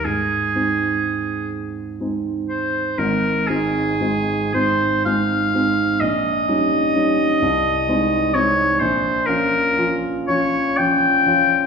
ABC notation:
X:1
M:6/8
L:1/8
Q:3/8=42
K:Ab
V:1 name="Oboe"
A3 z2 c | B A2 c f2 | e4- e d | c B z d g2 |]
V:2 name="Grand piano"
A,, [A,CE]3 [A,CE]2 | [A,,,A,,] [A,CE] [A,CE] [A,CE] [A,CE] [A,CE] | B,,, [G,DE] [G,DE] C,, [A,CE] [A,CE] | B,,, [F,DF] [F,DF] [F,DF] [F,DF] [F,DF] |]